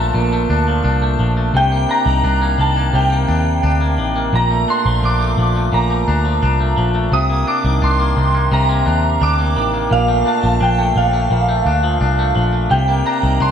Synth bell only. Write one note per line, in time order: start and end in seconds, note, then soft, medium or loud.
0.00 1.16 A5 medium
1.57 1.91 G5 medium
1.91 2.56 A#5 medium
2.61 2.96 A5 medium
2.95 3.95 G5 medium
4.36 4.70 A#5 medium
4.70 5.05 C6 medium
5.05 5.76 D6 medium
5.74 6.74 A#5 medium
7.13 7.49 D#6 medium
7.48 7.84 D6 medium
7.84 8.55 C6 medium
8.53 9.24 A#5 medium
9.23 9.71 D6 medium
9.93 10.28 F5 medium
10.28 10.63 A5 medium
10.63 10.95 G5 medium
10.97 12.32 F5 medium
12.71 13.07 G5 medium
13.06 13.42 A#5 medium
13.42 13.51 C6 medium